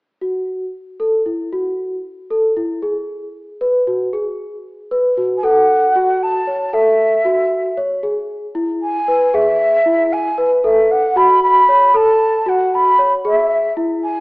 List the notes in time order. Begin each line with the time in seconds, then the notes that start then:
0.21 F#4
1.00 A4
1.26 E4
1.53 F#4
2.31 A4
2.57 E4
2.82 G#4
3.61 B4
3.87 F#4
4.13 G#4
4.91 B4
5.17 F#4
5.37 G#5
5.43 A4 F#5
5.96 F#4
6.23 A5
6.47 C#5
6.73 A4 E5
7.25 F#4
7.77 C#5
8.03 G#4
8.55 E4
8.82 G#5
9.08 B4
9.34 G#4 E5
9.86 E4
10.13 G#5
10.38 B4
10.64 A4 E5
10.91 F#5
11.16 F#4 B5
11.43 B5
11.69 C#5
11.94 A4 A5
12.46 F#4 F#5
12.74 B5
12.99 C#5
13.25 G#4 E5
13.77 E4
14.03 G#5